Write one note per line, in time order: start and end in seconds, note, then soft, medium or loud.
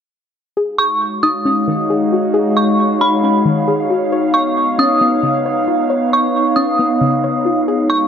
0.56 4.08 G#3 medium
0.56 8.08 D#4 medium
0.56 4.08 D#4 medium
0.56 4.08 F#4 medium
0.56 4.08 G#4 medium
0.56 1.89 G#4 loud
0.56 5.86 C#5 medium
0.56 8.08 C#5 medium
0.56 8.08 F5 medium
0.78 1.20 C#6 medium
1.23 2.56 D#4 medium
1.23 1.86 D#6 medium
1.45 2.79 C#4 medium
1.68 3.01 D#3 medium
1.90 2.33 G#4 medium
2.13 3.46 F#4 medium
2.34 3.67 G#4 loud
2.57 2.98 C#6 medium
3.01 4.12 D#4 medium
3.01 3.64 B5 medium
3.23 4.12 C#4 medium
3.45 4.12 D#3 medium
3.68 4.12 G#4 loud
3.90 4.12 F#4 medium
4.12 7.64 B3 medium
4.12 8.08 D#4 medium
4.12 7.64 B4 medium
4.12 5.44 C#5 loud
4.34 4.76 C#6 medium
4.79 6.12 C#4 medium
4.79 5.42 D#6 medium
5.01 6.34 B3 medium
5.23 6.56 C#3 medium
5.46 5.89 C#5 medium
5.68 7.01 F4 medium
5.90 7.23 C#5 loud
5.90 7.66 D#5 medium
6.13 6.54 C#6 medium
6.56 7.68 C#4 medium
6.56 7.63 D#6 medium
6.79 7.68 B3 medium
7.01 7.68 C#3 medium
7.24 7.68 C#5 medium
7.45 7.68 F4 medium
7.68 8.08 G#3 medium
7.68 8.08 F#4 medium
7.68 8.08 G#4 medium
7.68 8.08 G#4 loud
7.68 8.08 C#5 medium
7.90 8.08 C#6 medium